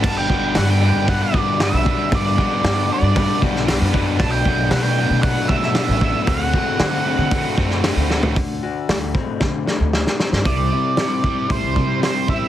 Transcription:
<<
  \new Staff \with { instrumentName = "Lead electric guitar" } { \time 4/4 \key g \major \tempo 4 = 115 a''16 g''8. fis''16 g''8. fis''16 d''8. e''4 | d''4. d''4 r4. | a''16 g''8. fis''16 g''8. fis''8 e''4. | fis''2. r4 |
r1 | d''2 c''4 c''8 e''8 | }
  \new Staff \with { instrumentName = "Clean electric guitar" } { \time 4/4 \key g \major <g b d' fis'>8 <g b d' fis'>8 <g b d' fis'>8 <g b d' fis'>8 <g b d' fis'>8 <g b d' fis'>8 <g b d' fis'>8 <g b d' fis'>8 | <g b d' fis'>8 <g b d' fis'>8 <g b d' fis'>8 <g b d' fis'>8 <g b d' fis'>8 <g b d' fis'>8 <g b d' fis'>8 <g b d' fis'>8 | <b, fis a d' fis'>8 <b, fis a d' fis'>8 <b, fis a d' fis'>8 <b, fis a d' fis'>8 <b, fis a d' fis'>8 <b, fis a d' fis'>8 <b, fis a d' fis'>8 <b, fis a d' fis'>8 | <d a c' fis'>8 <d a c' fis'>8 <d a c' fis'>8 <d a c' fis'>8 <d a c' fis'>8 <d a c' fis'>8 <d a c' fis'>8 <d a c' fis'>8 |
d8 fis'8 a8 c'8 d8 a8 d8 c'8 | <c g c' e'>8 <g c' e'>8 <c g c' e'>8 <g c' e'>8 <c g c' e'>4 <c g c' e'>8 <g c' e'>8 | }
  \new Staff \with { instrumentName = "Overdriven electric guitar" } { \clef bass \time 4/4 \key g \major <g, d g b d'>8 <g, d g b d'>8 <g, d g b d'>8 <g, d g b d'>8 <g, d g b d'>8 <g, d g b d'>8 <g, d g b d'>8 <g, d g b d'>8 | <g, d g b d'>8 <g, d g b d'>8 <g, d g b d'>8 <g, d g b d'>8 <g, d g b d'>8 <g, d g b d'>8 <g, d g b d'>8 <g, d g b d'>8 | <b, fis b d'>8 <b, fis b d'>8 <b, fis b d'>8 <b, fis b d'>8 <b, fis b d'>8 <b, fis b d'>8 <b, fis b d'>8 <b, fis b d'>8 | <d a c' fis'>8 <d a c' fis'>8 <d a c' fis'>8 <d a c' fis'>8 <d a c' fis'>8 <d a c' fis'>8 <d a c' fis'>8 <d a c' fis'>8 |
r1 | c4 c8 g8 c8 g8 c'8 e'8 | }
  \new Staff \with { instrumentName = "Upright bass" } { \clef bass \time 4/4 \key g \major g,,4 g,8. g,8 r16 g,8. b,,8 r16 | g,8 r8 g,8 r16 g,8 r16 b,,8. fis,8. | b,,4 b,8. b,8 r16 b,8. a,,8 r16 | d,8 r8 d8 r16 d8 r16 fis,8. d,8 r16 |
d,8 r8 d,8 r8 d8 r16 d,8 r8 g,16 | c,8 r4. a,,16 c,16 c8 r8 a,,16 r16 | }
  \new DrumStaff \with { instrumentName = "Drums" } \drummode { \time 4/4 <cymc bd>8 bd8 <hho sn>4 <hho bd>8 bd8 <hho sn>8 bd8 | <hho bd>8 bd8 <hho sn>4 <hho bd>8 bd16 sn16 <hho sn>8 bd8 | <hho bd>8 bd8 <hho sn>4 <hho bd>8 bd16 sn16 <hho sn>8 bd8 | <hho bd>8 bd8 <hho sn>4 <hho bd>8 bd16 sn16 <hho sn>8 sn16 tomfh16 |
<hho bd>4 <hho sn>8 bd8 <bd sn>8 sn8 sn16 sn16 sn16 sn16 | <hho bd>4 <hho sn>8 bd8 <hho bd>8 bd8 <hho sn>8 bd8 | }
>>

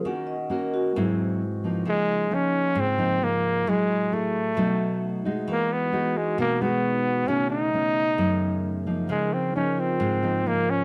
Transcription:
<<
  \new Staff \with { instrumentName = "Vibraphone" } { \time 4/4 \key aes \mixolydian \tempo 4 = 133 ges''8 ees''8 bes'8 ges'8 fes'4.~ fes'16 r16 | \key des \major aes'2.~ aes'16 r8. | r2. r8 ges'8~ | ges'8 r4 fis'2~ fis'8~ |
fis'8 r2. r8 | ees'16 aes'16 bes'4 f'2~ f'8 | }
  \new Staff \with { instrumentName = "Flugelhorn" } { \time 4/4 \key aes \mixolydian r1 | \key des \major aes4 des'4 c'4 bes4 | aes4 a2~ a8 r8 | bes8 b4 gis8 bes8 b4. |
des'8 ees'2. r8 | aes8 c'8 des'8 c'4. bes8 des'8 | }
  \new Staff \with { instrumentName = "Pipe organ" } { \time 4/4 \key aes \mixolydian ges'1 | \key des \major f'1 | ges'2 ees'2 | fis'1 |
ees'1 | ees'1 | }
  \new Staff \with { instrumentName = "Pipe organ" } { \clef bass \time 4/4 \key aes \mixolydian << { <ees des'>2 <aes c'>2 | \key des \major <bes ees'>1 | fes'2 <ces a>2 | gis1 |
<a ces'>1 | <f bes'>1 | } \\ { r2 fes2 | des1 | a,2 r2 | e1 |
des1~ | des1 | } >> }
  \new Staff \with { instrumentName = "Nylon-string guitar" } { \time 4/4 \key aes \mixolydian << { <bes des' ges'>8 r8 <bes des' ges'>4 <ges c' fes'>4 r8 <f bes ees'>8~ | \key des \major <f bes ees'>4 <f bes ees'>4 r8 <f bes ees'>8 <f bes ees'>4 | <fes' aes'>4 <a fes' aes'>4 <ges a ees'>4. <aes ees' ges'>8~ | <aes ees' ges'>4 <gis dis' fis'>4. <gis dis' fis'>4. |
<ees a des'>4 <ees a des'>8 r8 <ees a des'>4. <f bes ees'>8~ | <f bes ees'>4 <f bes ees'>4. <f bes ees'>8 <f bes ees'>4 | } \\ { ees2 aes,2 | des2 aes,2 | ges2 ces2 | e2 b,2 |
ces2 ges,2 | des2 aes,2 | } >> }
>>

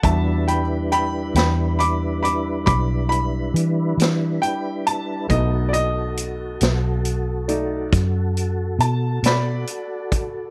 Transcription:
<<
  \new Staff \with { instrumentName = "Upright piano" } { \time 12/8 \key e \minor \tempo 4. = 46 << { <e'' a''>8 <g'' b''>8 <g'' b''>8 <g'' b''>8 <b'' d'''>8 <b'' d'''>8 <b'' d'''>8 b''8 r4 g''8 a''8 | dis''8 <d'' dis''>2. r8 a''8 <d'' b''>4. | } \\ { <g d' fis'>8 r1 r4. | <a b dis'>2~ <a b dis'>8 <a dis' d''>8 r2. | } >> }
  \new Staff \with { instrumentName = "Tonewheel organ" } { \time 12/8 \key e \minor <g d' e' b'>1. | <fis' a'>1. | }
  \new Staff \with { instrumentName = "Fingered electric bass" } { \clef bass \time 12/8 \key e \minor e,4. e,4. b,,4 e8 e8 r4 | b,,4. b,,4. fis,4 b,8 b,8 r4 | }
  \new DrumStaff \with { instrumentName = "Drums" } \drummode { \time 12/8 <hh bd>8 hh8 hh8 <hh sn>8 hh8 hh8 <hh bd>8 hh8 hh8 <hh sn>8 hh8 hh8 | <hh bd>8 hh8 hh8 <hh sn>8 hh8 hh8 <hh bd sn>8 hh8 hh8 <hh sn>8 hh8 <hh bd>8 | }
>>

